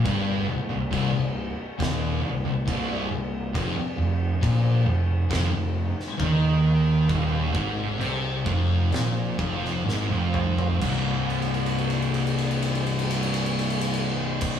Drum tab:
CC |x-------x-------x-------x-------|x-------x-------x-------x-------|x-------x-------x---------------|x---x-x-x-x-x-x-x-x-x-x-x-x---x-|
RD |--------------------------------|--------------------------------|--------------------------------|-----x-x-x-x-x-x-x-x-x-x-x------|
SD |----------------o---------------|----------------o-----o---------|----------------o-----o-o-------|--------------------------------|
T2 |--------------------------------|--------------------------------|----------------------------o---|--------------------------------|
FT |--------------------------------|--------------------------------|------------------------------o-|--------------------------------|
BD |o-------o-------o-------o-------|o-------o-------o-------o-------|o---o-------o-------o-----------|o-----------------------------o-|